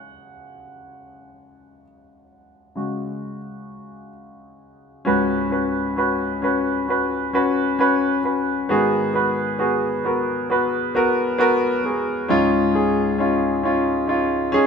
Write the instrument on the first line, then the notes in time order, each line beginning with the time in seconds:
grand piano
Already playing: C#3 G#3 F#4 F#5 G#5
2.75 C#3 G#3 F#4
5.05 C#2 G#2 C#4 F#4 B4
5.50 C#4 F#4 B4
5.96 C#4 F#4 B4
6.42 C#4 F#4 B4
6.88 C#4 F#4 B4
7.33 C#4 F#4 B4
7.79 C#4 F#4 B4
8.24 C#4 F#4 B4
8.69 G#2 D#3 B3 F#4 G#4
9.14 B3 F#4 B4
9.59 B3 F#4 G#4
10.04 B3 F#4 A#4
10.50 B3 F#4 B4
10.95 B3 F#4 A#4
11.38 B3 F#4 A#4
11.84 B3 F#4 G#4
12.28 C#2 G#2 C#4 D#4 F4
12.73 C#4 D#4 G#4
13.18 C#4 D#4 F4
13.63 C#4 D#4 F4
14.07 C#4 D#4 F4
14.52 C#4 D#4 G#4